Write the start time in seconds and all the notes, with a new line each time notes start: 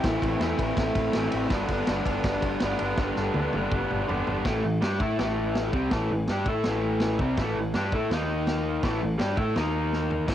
0.04 A1 A2 E3 A3 C4 E4, kick, snare, ride
0.22 A1 C4 E4, kick, ride
0.27 A3
0.39 E2 A2 E3 A3 C4, snare, ride
0.44 E4
0.59 A1 A3 C4 E4, kick, ride
0.77 A1, kick, snare, ride
0.95 A1, kick, ride
1.13 A1 E3 A3, snare, ride
1.18 C4 E4
1.31 A1 A3 C4 E4, ride
1.49 G1 G2 D3 G3 B3 D4, kick, snare, ride
1.68 G1 G3 B3 D4, kick, ride
1.87 G1 G2 D3 G3 B3 D4, snare, ride
2.06 G1 B3 D4, kick, ride
2.10 G3
2.24 G1, kick, snare, ride
2.42 G1, kick, ride
2.60 G1 D3 G3 B3, snare, ride
2.65 D4
2.79 G1 B3 D4, ride
2.84 G3
2.97 G1 G2 D3 G3, kick, snare
3.01 B3 D4
3.16 G1 B3 D4, snare
3.20 G3
3.34 D2 G2 D3, high tom
3.39 G3 B3 D4
3.53 G1 B3 D4, high tom
3.58 G3
3.71 G1, kick, mid tom
3.90 G1, mid tom
4.07 G1 D3 G3 B3 D4, floor tom
4.27 G1 B3 D4, floor tom
4.31 G3
4.45 A1 A2 E3 A3, kick, snare, crash
4.64 A1 A2 E3
4.81 G2 G3 D4 G4, snare, crash
5.00 A2 A3 E4 A4, kick
5.18 A1 A2 E3 A3, snare, crash
5.55 snare, crash
5.73 C2 C3 G3 C4, kick
5.91 A1 A2 E3 A3, kick, snare, crash
6.11 A1 A2 E3
6.27 G2 G3 D4 G4, snare, crash
6.46 A2 A3 E4 A4, kick
6.64 A1 A2 E3 A3, snare, crash
7.00 snare, crash
7.19 C2 C3 G3 C4, kick
7.37 A1 A2 E3 A3, kick, snare, crash
7.57 A1 A2 E3
7.74 G2 G3 D4 G4, snare, crash
7.92 A2 A3 E4 A4, kick
8.10 D#2 D#3 A#3 D#4, snare, crash
8.47 snare, crash
8.83 A1 A2 E3 A3, kick, snare, crash
9.01 A1 A2 E3
9.18 G2 G3 D4 G4, snare, crash
9.37 A2 A3 E4 A4, kick
9.55 D#2 D#3 A#3 D#4, snare, crash
9.93 snare
10.11 floor tom
10.27 A1 A2 E3 A3, kick, snare, crash